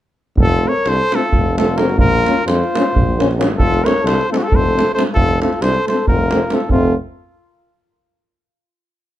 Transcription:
0.36 0.63 F1 medium
0.36 davul low medium
0.42 0.70 F4 medium
0.42 0.70 A4 medium
0.49 davul high soft
0.63 0.72 A3 soft
0.63 0.73 C4 soft
0.68 0.89 A#4 medium
0.68 0.90 C#5 medium
0.76 davul high soft
0.85 1.00 C2 medium
0.85 1.17 A4 medium
0.85 1.17 C5 loud
0.85 davul high medium
1.12 1.22 A3 soft
1.12 1.22 C4 soft
1.12 1.59 F4 medium
1.12 1.57 A4 medium
1.12 davul high medium
1.33 1.98 F1 medium
1.33 davul low medium
1.57 1.65 A3 medium
1.57 1.66 C4 medium
1.57 1.82 F4 medium
1.57 1.79 A4 medium
1.57 davul high medium
1.68 davul high soft
1.75 1.84 A3 medium
1.75 1.97 A#4 medium
1.75 davul high medium
1.80 1.88 C4 medium
1.80 1.97 F#4 medium
1.89 davul high soft
1.96 2.23 A#1 medium
1.96 2.42 F4 medium
1.96 2.43 A#4 medium
1.96 davul low medium
2.12 davul high soft
2.26 2.34 A#3 medium
2.26 2.35 C#4 medium
2.26 davul high medium
2.37 davul high soft
2.44 2.61 F2 medium
2.44 3.33 F4 medium
2.44 3.34 C5 medium
2.44 davul high medium
2.64 davul high soft
2.74 2.82 A#3 medium
2.74 2.84 C#4 medium
2.74 davul high medium
2.94 3.58 A#1 medium
2.94 davul low medium
3.18 3.26 A#3 medium
3.18 3.27 C#4 medium
3.18 davul high medium
3.31 davul high soft
3.37 3.45 A#3 medium
3.37 3.46 C#4 medium
3.37 davul high medium
3.50 davul high soft
3.57 3.83 F1 medium
3.57 3.84 F4 medium
3.57 3.87 A4 medium
3.57 davul low medium
3.74 davul high soft
3.83 3.93 A3 medium
3.83 3.93 C4 medium
3.83 4.04 A#4 medium
3.83 4.08 C#5 medium
3.83 davul high medium
3.98 davul high soft
4.02 4.19 C2 medium
4.02 4.29 A4 medium
4.06 4.32 C5 loud
4.06 davul high medium
4.21 davul high soft
4.29 4.39 A3 soft
4.29 4.40 C4 medium
4.29 4.41 D#4 medium
4.29 4.35 F4 medium
4.29 4.39 A4 medium
4.34 4.45 F#4 medium
4.34 davul high medium
4.39 4.50 F4 medium
4.39 4.57 A4 medium
4.48 4.86 F1 medium
4.48 4.93 A4 medium
4.48 davul low medium
4.55 4.94 C5 medium
4.76 4.84 A3 medium
4.76 4.84 C4 medium
4.76 davul high medium
4.89 davul high soft
4.94 5.03 A3 medium
4.94 5.05 C4 medium
4.94 5.03 A4 medium
4.94 5.03 C5 medium
4.99 davul high medium
5.07 davul high soft
5.14 5.40 F1 medium
5.14 5.39 F4 medium
5.14 5.39 A4 medium
5.14 davul low medium
5.28 davul high soft
5.41 5.49 A3 medium
5.41 5.50 C4 soft
5.41 5.63 F4 medium
5.41 5.64 A4 medium
5.41 davul high medium
5.53 davul high soft
5.61 5.76 C2 medium
5.61 5.88 A4 medium
5.61 5.88 C5 medium
5.61 davul high medium
5.74 davul high soft
5.87 5.95 A3 soft
5.87 6.08 A4 medium
5.87 6.07 C5 medium
5.87 davul high medium
5.91 5.98 C4 medium
5.97 davul high soft
6.07 6.42 F1 medium
6.07 6.51 F4 medium
6.07 6.56 A#4 medium
6.07 davul low medium
6.31 6.40 A3 soft
6.31 6.40 C4 medium
6.31 davul high medium
6.50 6.59 A3 medium
6.50 6.59 C4 medium
6.50 6.69 F4 medium
6.50 davul high medium
6.55 6.70 A4 medium
6.60 davul high soft
6.69 6.94 F1 medium
6.69 6.94 A3 medium
6.69 6.95 C4 medium
6.69 6.95 F4 medium
6.69 davul low medium

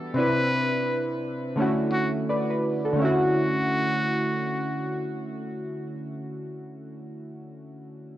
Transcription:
0.00 0.11 E3 medium
0.00 0.14 G3 medium
0.00 0.11 B3 medium
0.00 0.12 D4 medium
0.00 0.13 F#4 medium
0.14 1.53 C3 medium
0.14 1.54 C4 medium
0.14 1.55 D4 medium
0.14 1.04 B4 loud
0.18 1.56 E4 medium
0.18 1.56 B4 medium
1.56 2.92 D3 medium
1.56 2.95 A3 medium
1.56 2.96 C#4 medium
1.60 2.97 E4 medium
1.60 2.28 F#4 medium
1.92 2.12 F#4 medium
2.29 2.49 B4 medium
2.29 2.49 D5 medium
2.50 2.83 B4 medium
2.85 3.04 F#4 soft
2.85 3.18 A4 medium
2.93 6.24 D3 medium
2.93 6.27 A3 medium
2.99 6.30 C#4 medium
2.99 6.33 E4 medium
2.99 5.07 F#4 medium
3.05 6.36 F#4 loud

